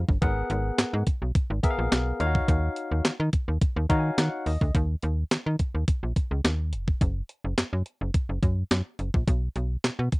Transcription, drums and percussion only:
0.09 kick
0.22 kick, closed hi-hat
0.50 closed hi-hat
0.78 snare, clap, closed hi-hat
1.07 kick, closed hi-hat
1.35 kick, closed hi-hat
1.63 kick, closed hi-hat
1.92 snare, clap, closed hi-hat
2.20 closed hi-hat
2.35 kick
2.48 kick, closed hi-hat
2.76 closed hi-hat
3.05 snare, clap, closed hi-hat
3.33 kick, closed hi-hat
3.61 kick, closed hi-hat
3.90 kick, closed hi-hat
4.18 snare, clap, closed hi-hat
4.46 open hi-hat
4.61 kick
4.75 kick, closed hi-hat
5.03 closed hi-hat
5.31 snare, clap, closed hi-hat
5.59 kick, closed hi-hat
5.88 kick, closed hi-hat
6.16 kick, closed hi-hat
6.45 snare, clap, closed hi-hat
6.73 closed hi-hat
6.88 kick
7.01 kick, closed hi-hat
7.29 closed hi-hat
7.58 snare, clap, closed hi-hat
7.86 closed hi-hat
8.14 kick, closed hi-hat
8.43 kick, closed hi-hat
8.71 snare, clap, closed hi-hat
8.99 closed hi-hat
9.14 kick
9.28 kick, closed hi-hat
9.56 closed hi-hat
9.84 snare, clap, closed hi-hat
10.12 kick, closed hi-hat

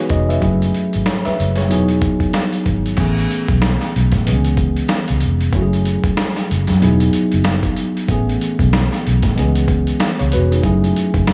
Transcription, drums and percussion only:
0.10 kick, closed hi-hat
0.30 closed hi-hat
0.42 kick, closed hi-hat
0.62 closed hi-hat
0.74 closed hi-hat
0.93 closed hi-hat
1.06 snare, closed hi-hat
1.25 snare, closed hi-hat
1.40 closed hi-hat
1.55 snare, closed hi-hat
1.71 closed hi-hat
1.88 closed hi-hat
2.01 kick, closed hi-hat
2.20 kick, closed hi-hat
2.33 snare, closed hi-hat
2.52 closed hi-hat
2.66 kick, closed hi-hat
2.86 closed hi-hat
2.97 kick, closed hi-hat, crash
3.18 closed hi-hat
3.31 closed hi-hat
3.48 kick, closed hi-hat
3.62 snare, closed hi-hat
3.81 snare, closed hi-hat
3.96 closed hi-hat
4.12 kick, snare, closed hi-hat
4.27 closed hi-hat
4.45 closed hi-hat
4.57 kick, closed hi-hat
4.76 closed hi-hat
4.88 snare, closed hi-hat
5.08 closed hi-hat
5.20 closed hi-hat
5.41 closed hi-hat
5.53 kick, closed hi-hat
5.73 closed hi-hat
5.85 closed hi-hat
6.04 kick, closed hi-hat
6.17 snare, closed hi-hat
6.36 snare, closed hi-hat
6.51 closed hi-hat
6.67 snare, closed hi-hat
6.82 closed hi-hat
7.00 closed hi-hat
7.13 closed hi-hat
7.32 closed hi-hat
7.44 snare, closed hi-hat
7.63 kick, closed hi-hat
7.76 closed hi-hat
7.97 closed hi-hat
8.09 kick, closed hi-hat
8.29 closed hi-hat
8.41 closed hi-hat
8.59 kick, closed hi-hat
8.73 snare, closed hi-hat
8.92 snare, closed hi-hat
9.07 closed hi-hat
9.23 kick, snare, closed hi-hat
9.38 closed hi-hat
9.55 closed hi-hat
9.68 kick, closed hi-hat
9.87 closed hi-hat
10.00 snare, closed hi-hat
10.19 closed hi-hat
10.32 closed hi-hat
10.52 closed hi-hat
10.64 kick, closed hi-hat
10.84 closed hi-hat
10.96 closed hi-hat
11.14 kick, closed hi-hat
11.27 snare, closed hi-hat

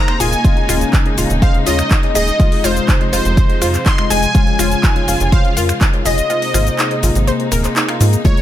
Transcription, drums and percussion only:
0.08 finger snap, closed hi-hat
0.20 open hi-hat, cabasa
0.32 closed hi-hat, cabasa
0.45 kick, closed hi-hat, cabasa
0.57 closed hi-hat
0.69 finger snap, open hi-hat, cabasa
0.81 closed hi-hat, cabasa
0.93 kick, clap, closed hi-hat, cabasa
1.06 closed hi-hat
1.18 open hi-hat, cabasa
1.30 closed hi-hat, cabasa
1.42 kick, closed hi-hat, cabasa
1.54 closed hi-hat
1.67 open hi-hat, cabasa
1.79 finger snap, closed hi-hat, cabasa
1.91 kick, clap, closed hi-hat, cabasa
2.03 closed hi-hat
2.15 open hi-hat, cabasa
2.28 closed hi-hat, cabasa
2.40 kick, closed hi-hat, cabasa
2.52 open hi-hat
2.64 open hi-hat, cabasa
2.76 closed hi-hat, cabasa
2.88 kick, clap, closed hi-hat, cabasa
3.01 closed hi-hat
3.13 open hi-hat, cabasa
3.25 closed hi-hat, cabasa
3.37 kick, closed hi-hat, cabasa
3.50 closed hi-hat
3.62 finger snap, open hi-hat, cabasa
3.74 clap, closed hi-hat, cabasa
3.86 kick, clap, closed hi-hat, cabasa
3.98 finger snap, closed hi-hat
4.10 open hi-hat, cabasa
4.23 closed hi-hat, cabasa
4.35 kick, closed hi-hat, cabasa
4.47 closed hi-hat
4.59 finger snap, open hi-hat, cabasa
4.72 closed hi-hat, cabasa
4.84 kick, clap, closed hi-hat, cabasa
4.96 closed hi-hat
5.08 open hi-hat, cabasa
5.20 closed hi-hat, cabasa
5.32 kick, closed hi-hat, cabasa
5.45 closed hi-hat
5.57 open hi-hat, cabasa
5.69 finger snap, closed hi-hat, cabasa
5.81 kick, clap, closed hi-hat, cabasa
5.94 closed hi-hat
6.06 open hi-hat, cabasa
6.18 closed hi-hat, cabasa
6.30 closed hi-hat, cabasa
6.42 open hi-hat
6.54 finger snap, open hi-hat, cabasa
6.67 closed hi-hat, cabasa
6.79 clap, closed hi-hat, cabasa
6.91 closed hi-hat
7.03 open hi-hat, cabasa
7.15 closed hi-hat, cabasa
7.27 closed hi-hat, cabasa
7.40 closed hi-hat
7.52 finger snap, open hi-hat, cabasa
7.64 clap, closed hi-hat, cabasa
7.76 clap, closed hi-hat, cabasa
7.89 finger snap, closed hi-hat
8.01 open hi-hat, cabasa
8.13 closed hi-hat, cabasa
8.25 kick, closed hi-hat, high conga, cabasa
8.37 closed hi-hat

